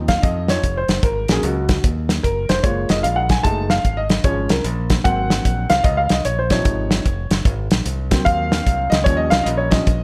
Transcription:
Already playing: D#2 F3 C4 D#4
0.08 F5, kick, snare, closed hi-hat
0.22 F2 D#5, kick, closed hi-hat
0.48 F3 C4 D#4 C#5, snare, closed hi-hat
0.63 F1, kick, closed hi-hat
0.77 C5
0.88 F#1, snare, closed hi-hat
1.03 G#1 A#4, kick, closed hi-hat
1.28 A#1 F#3 A#3 C#4 G#4, snare, closed hi-hat
1.43 C#2 F#4, closed hi-hat
1.69 kick, snare, closed hi-hat
1.84 D#2, kick, closed hi-hat
2.09 snare, closed hi-hat
2.23 F#1 A#4, kick, closed hi-hat
2.49 F1 C5, snare, closed hi-hat
2.63 F#1 G#3 A#3 F4 C#5, kick, closed hi-hat
2.89 F1 D#5, snare, closed hi-hat
3.03 A#1 F5, closed hi-hat
3.16 F#5
3.29 G#5, kick, snare, closed hi-hat
3.43 F#1 G#3 A3 D#4 A5, kick, closed hi-hat
3.70 F5, snare, closed hi-hat
3.84 G#1, kick, closed hi-hat
3.97 D#5
4.09 snare, closed hi-hat
4.24 G#1 F3 G#3 C#4 C#5, kick, closed hi-hat
4.49 C2 A#4, snare, closed hi-hat
4.64 A#1, closed hi-hat
4.90 kick, snare, closed hi-hat
5.04 G#1 F#3 A#3 C4 F#5, kick, closed hi-hat
5.30 snare, closed hi-hat
5.45 A#1, kick, closed hi-hat
5.70 C2 F5, snare, closed hi-hat
5.84 C#2 D#5, kick, closed hi-hat
5.97 F5
6.09 C2 D#5, snare, closed hi-hat
6.25 A#1 C#5, closed hi-hat
6.39 C5
6.50 C3 F3 D#4 C#5, kick, snare, closed hi-hat
6.65 G#1, kick, closed hi-hat
6.91 snare, closed hi-hat
7.06 F1, kick, closed hi-hat
7.31 F#1, snare, closed hi-hat
7.45 G#1, kick, closed hi-hat
7.71 A#1, snare, closed hi-hat
7.86 C2, closed hi-hat
8.11 F#3 A#3 C4, kick, snare, closed hi-hat
8.25 D#2 F5, kick, closed hi-hat
8.52 snare, closed hi-hat
8.67 C2, kick, closed hi-hat
8.90 C#2 D#5, snare, closed hi-hat
9.04 D#2 F3 G3 C#4 C#5, kick, closed hi-hat
9.17 D#5
9.30 C2 F5, snare, closed hi-hat
9.44 A#1 D#5, closed hi-hat
9.57 C#5
9.71 F3 G3 C#4 D#5, kick, snare, closed hi-hat
9.87 A#1, kick, closed hi-hat

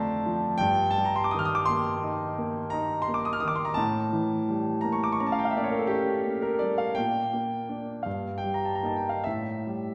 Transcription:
Already playing: F2 F3 A3 D4 F4 C5 D5 E5 F5 G5 A5 A#5 C6
0.26 F3
0.58 G2 G5
0.91 A5
0.98 G3
1.05 A#5
1.16 C6
1.24 D6
1.31 D#3 D#6
1.39 F6
1.45 D#6
1.55 D6
1.65 A#3 C6
2.03 D#4
2.38 A#3
2.70 D#4 A#5
3.02 C6
3.08 A#3
3.14 D6
3.25 D#6
3.33 F6
3.40 D#3 D#6
3.48 D6
3.56 C6
3.65 A#5
3.74 A2 A5
4.13 E3
4.49 G3
4.81 A#3 A#5
4.92 C#6
5.04 D6
5.12 C#6
5.20 C#4 A#5
5.27 A5
5.32 F5
5.39 G5
5.45 F5
5.50 E5
5.57 A#3 D5
5.64 C#5
5.71 A#4
5.79 A4
5.87 C#4 G4
6.26 A#3
6.42 A#4
6.59 G3 D5
6.78 F5
6.95 A#2 G5
7.33 A#3
7.69 A#3 D4
8.03 G2 F5
8.38 G5
8.44 G3
8.54 A#5
8.65 A5
8.75 A#5
8.83 A#3 D#4 A5
8.96 G5
9.09 F5
9.24 A2 E5
9.67 G3

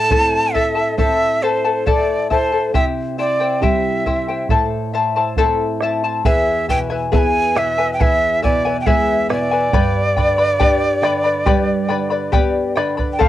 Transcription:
Already playing: A2 A4 A5
0.10 A3 C4 E4 A4 C5 E5 A5, bombo low
0.54 E4 A4 E5 A5, bombo low
0.75 E4 A4 A5
0.97 A3 C4 E4 A4 C5 E5 A5, bombo low
1.42 E4 A4 C5 E5 A5
1.65 E4 A4 A5
1.86 E4 A4 C5 D5 E5 A5, bombo low
2.30 E4 A4 C5 E5 A5, bombo low
2.52 E4 A4 A5
2.73 C3 E4 G4 C5 E5 G5, bombo low
3.18 E4 C5 D5 E5 G5
3.40 E4 C5 G5
3.60 G3 C4 E4 G4 C5 E5 G5, bombo low
4.06 E4 C5 E5 G5, bombo low
4.28 E4 C5 G5
4.49 A2 E4 A4 C5 E5 A5, bombo low
4.93 E4 C5 E5 A5
5.16 E4 C5 A5
5.37 A3 C4 E4 A4 C5 E5 A5, bombo low
5.81 E4 C5 E5 A5, bombo rim
6.04 E4 C5 A5
6.25 E2 E4 G#4 B4 E5 G#5, bombo low
6.68 B2 E4 B4 E5 G5 G#5, bombo low
6.90 E4 B4 G#5
7.12 B3 E4 G#4 B4 E5 G#5 A5, bombo low
7.18 G#5
7.55 B2 E4 B4 E5 G#5, bombo rim
7.78 E4 B4 G#5
7.93 G5
7.99 E3 E4 G#4 B4 E5 G#5, bombo low
8.42 B2 E4 B4 D5 E5 G#5, bombo low
8.65 E4 B4 G#5
8.81 G5
8.86 G#3 E4 G#4 B4 E5 G#5, bombo low
9.29 B2 E4 B4 D5 E5 G#5, bombo rim
9.51 E4 B4 G#5
9.73 G2 G4 B4 D5 G5 B5, bombo low
10.16 D3 B4 D5 G5 B5, bombo low
10.38 B4 D5 B5
10.60 D4 G4 B4 D5 G5 B5, bombo low
11.02 D3 B4 D5 G5 B5, bombo rim
11.24 B4 D5 B5
11.46 G3 G4 B4 D5 G5 B5, bombo low
11.89 D3 B4 D5 G5 B5
12.10 B4 D5 B5
12.32 B3 G4 B4 D5 G5 B5, bombo low
12.76 D3 B4 D5 G5 B5, bombo rim
12.97 B4 D5 B5, bombo low
13.13 G5
13.19 F2 A4 C5 F5, bombo low

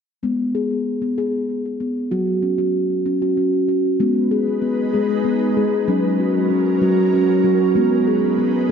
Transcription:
0.23 G#3 B3
0.55 G#4
1.02 B3
1.18 G#4
1.80 B3
2.11 F#3 F#4
2.42 C#4
2.58 F#4
3.06 C#4
3.22 F#4
3.37 C#4
3.68 F#4
3.98 G#3 B3 D#4 B4
4.31 G#4
4.62 B3
4.93 G#3 G#4
5.25 B3
5.57 G#3 G#4
5.87 F#3 C#4 A#4
6.20 F#4
6.50 C#4
6.82 F#3 F#4
7.14 C#4
7.44 F#3 F#4
7.74 G#3 B3 D#4 B4
8.07 G#4
8.38 B3

